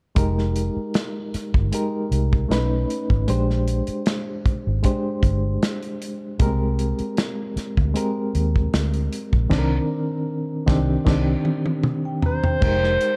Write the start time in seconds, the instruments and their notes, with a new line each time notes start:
0.15 fingered electric bass F1, reed electric piano G#3 D#4 G4 A#4, kick, closed hi-hat
0.38 snare
0.56 closed hi-hat
0.77 muted fingered electric bass stroke
0.94 snare, closed hi-hat
1.34 muted fingered electric bass stroke, snare, closed hi-hat
1.54 fingered electric bass G1, kick
1.72 reed electric piano G#3 D#4 G4 A#4, closed hi-hat
2.11 fingered electric bass C2, closed hi-hat
2.33 kick
2.49 fingered electric bass B1, reed electric piano A3 C#4 D#4 B4, snare, closed hi-hat
2.90 closed hi-hat
3.10 fingered electric bass G#1, kick
3.27 fingered electric bass A#1, reed electric piano G#3 D4 G4 C5, closed hi-hat
3.50 snare
3.68 closed hi-hat
3.87 muted fingered electric bass stroke, closed hi-hat
4.06 snare, closed hi-hat
4.46 muted fingered electric bass stroke, kick, closed hi-hat
4.67 fingered electric bass G#1
4.82 reed electric piano G#3 D4 G4 C5, kick, closed hi-hat
5.23 fingered electric bass G1, kick, closed hi-hat
5.63 snare, closed hi-hat
5.83 closed hi-hat
6.02 closed hi-hat
6.39 fingered electric bass C2, reed electric piano G#3 A#3 G4 A#4, kick, closed hi-hat
6.46 reed electric piano C4
6.79 closed hi-hat
6.99 muted fingered electric bass stroke, closed hi-hat
7.17 snare, closed hi-hat
7.56 muted fingered electric bass stroke, snare, closed hi-hat
7.77 fingered electric bass D2, kick
7.94 reed electric piano G#3 C4 G4 A#4, closed hi-hat
8.35 fingered electric bass D#2, closed hi-hat
8.56 kick
8.74 fingered electric bass D2, snare, closed hi-hat
8.94 closed hi-hat
9.13 closed hi-hat
9.33 fingered electric bass A#1, kick
9.50 fingered electric bass C2, reed electric piano D#3 C4 D4, kick, snare, crash
9.59 reed electric piano A#4
10.67 fingered electric bass C2, reed electric piano D#3 C4 D4 G4, kick, snare
11.05 fingered electric bass C2, reed electric piano D#3 C4 D4 G4, kick, snare, crash
11.45 high tom
11.66 high tom
11.83 mid tom
12.05 vibraphone G5
12.22 alto saxophone C5, vibraphone A#5, floor tom
12.43 vibraphone G5, floor tom
12.60 fingered electric bass F1, reed electric piano G#3 D#4 G4 A#4, kick, crash
12.84 snare
13.01 closed hi-hat